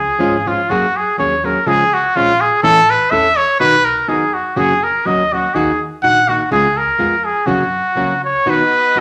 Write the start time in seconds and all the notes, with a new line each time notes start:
Already playing: G#4
0.19 G#1 F3 G#3 C#4 F4
0.46 F3 G#3 C#4 F4
0.70 F#2 F#3 A#3 C#4 F#4 G#4
0.97 G#4
1.18 D#2 F#3 A#3 C#4 G#4 C#5
1.44 F#3 A#3 C#4 G#4 A#4
1.66 C#2 C#3 F3 G#3 C#4 F4 G#4
1.94 F#4
2.16 A#1 F3 G#3 C#4 F4
2.41 G#4
2.63 A1 A2 E3 A3 C#4 E4 A4
2.90 B4
3.11 E2 A3 C#4 E4 A4 E5
3.38 C#5
3.60 B1 B2 D#3 B3 D#4 F#4 B4
3.85 A#4
4.08 F#2 D#3 B3 D#4 F#4 G#4
4.34 F#4
4.56 F#1 F#2 C#3 F#3 A#3 C#4 F#4 G#4
4.84 A#4
5.06 D2 F#3 A#3 C#4 F#4 D#5
5.33 F#3 A#3 C#4 F#4
5.55 D#2 D#3 A#3 D#4 F#4 G#4
6.02 A#1 D#3 A#3 D#4 F#4 F#5
6.28 D#3 A#3 D#4 F#4
6.51 C#2 C#3 G#3 B3 F4 G#4
6.78 A#4
6.99 F2 G#3 B3 F4 G#4
7.25 G#4
7.46 F#2 C#3 F#3 A#3 C#4 F#4
7.95 C#2 F#3 A#3 C#4 F#4
8.25 C#5
8.46 B2 D#3 B3 D#4 F#4 B4 D#5
8.96 D#3 B3 D#4 F#4